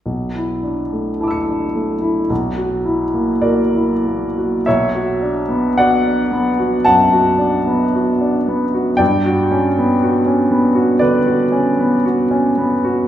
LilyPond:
\new Staff \with { instrumentName = "Grand piano" } { \time 4/4 \key b \minor \tempo 4 = 55 << { r4 <a'' d''' e''' cis''''>4 r4 <ais' d''>4 | <cis'' e''>4 <d'' fis''>4 <fis'' a''>2 | <d'' g''>2 <b' d''>4 r4 | } \\ { b,,16 e'16 d'16 a16 e'16 d'16 a16 e'16 b,,16 fis'16 e'16 ais16 fis'16 e'16 ais16 fis'16 | b,,16 fis'16 d'16 b16 fis'16 d'16 b16 fis'16 fis,16 fis'16 d'16 b16 fis'16 d'16 b16 fis'16 | g,16 fis'16 cis'16 b16 fis'16 cis'16 b16 fis'16 d16 fis'16 cis'16 b16 fis'16 cis'16 b16 fis'16 | } >> }